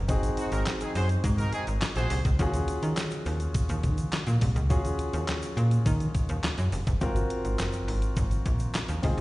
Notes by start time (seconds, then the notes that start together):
Already playing: F#1
0.08 G#1 C4 D#4 F#4 G#4, kick, closed hi-hat, shaker
0.23 closed hi-hat, shaker
0.37 C4 D#4 F#4, closed hi-hat, shaker
0.52 G#1 D#4 F#4 A#4, closed hi-hat, shaker
0.66 snare, clap, closed hi-hat, shaker
0.81 C4 D#4 G#4, closed hi-hat, shaker
0.95 F#2 F#4 G#4 C5, open hi-hat, shaker
1.09 closed hi-hat, shaker
1.24 G#2, kick, closed hi-hat, shaker
1.38 D#4 F#4 A#4, closed hi-hat, shaker
1.53 C4 D#4 G#4, closed hi-hat, shaker
1.67 G#1, closed hi-hat, shaker
1.81 snare, clap, closed hi-hat, shaker
1.96 A#1 F#4 G#4 C5, closed hi-hat, shaker
2.10 C2, open hi-hat, shaker
2.25 C#2, kick, closed hi-hat, shaker
2.39 D#2 C#4 F4 F#4 G#4, kick, closed hi-hat, shaker
2.54 closed hi-hat, shaker
2.68 closed hi-hat, shaker
2.83 D#3, closed hi-hat, shaker
2.97 snare, clap, closed hi-hat, shaker
3.11 closed hi-hat, shaker
3.26 D#2, open hi-hat, shaker
3.40 closed hi-hat, shaker
3.54 kick, closed hi-hat, shaker
3.69 D#2, closed hi-hat, shaker
3.83 D#3, kick, closed hi-hat, shaker
3.98 closed hi-hat, shaker
4.12 snare, clap, closed hi-hat, shaker
4.27 A#2, closed hi-hat, shaker
4.41 C2, kick, open hi-hat, shaker
4.56 C#2, closed hi-hat, shaker
4.70 D#2 C#4 F4 F#4 G#4, kick, closed hi-hat, shaker
4.85 closed hi-hat, shaker
4.99 closed hi-hat, shaker
5.13 D#2, closed hi-hat, shaker
5.28 snare, clap, closed hi-hat, shaker
5.42 closed hi-hat, shaker
5.57 A#2, closed hi-hat, shaker
5.71 closed hi-hat, shaker
5.86 D#3, kick, closed hi-hat, shaker
6.00 closed hi-hat, shaker
6.15 kick, closed hi-hat, shaker
6.29 D#2, closed hi-hat, shaker
6.43 snare, clap, closed hi-hat, shaker
6.58 F#2, closed hi-hat, shaker
6.72 F1, open hi-hat, shaker
6.87 F#1, kick, closed hi-hat, shaker
7.01 G#1 C4 F4 F#4 A#4, kick, closed hi-hat, shaker
7.16 closed hi-hat, shaker
7.30 closed hi-hat
7.44 G#1, closed hi-hat, shaker
7.59 F#1, snare, clap, closed hi-hat, shaker
7.73 closed hi-hat, shaker
7.88 G#1, open hi-hat
8.02 closed hi-hat, shaker
8.17 G#1, kick, closed hi-hat, shaker
8.31 closed hi-hat, shaker
8.46 A#1, kick, closed hi-hat, shaker
8.60 closed hi-hat, shaker
8.74 snare, clap, closed hi-hat, shaker
8.88 D#2, closed hi-hat, shaker
9.02 C#2 C4 D#4 F4 G#4, kick, open hi-hat, shaker
9.17 C2, closed hi-hat, shaker